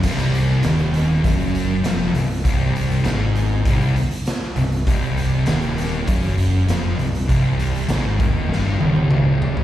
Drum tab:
CC |x---------------|----------------|----------------|----------------|
HH |xxx-xxx-xxx-x-xx|x-xxx-x-xxxxx-xx|xxx-xxx-xxx-x-xx|x-xxx-x---------|
SD |----o-------oo--|----o-------oo--|----o-------o---|----o---o-------|
T1 |----------------|----------------|----------------|----------oo----|
T2 |----------------|----------------|----------------|------------o---|
FT |----------------|----------------|----------------|--------------oo|
BD |o-------o-------|o-------o-------|o-------o-------|o-----o---------|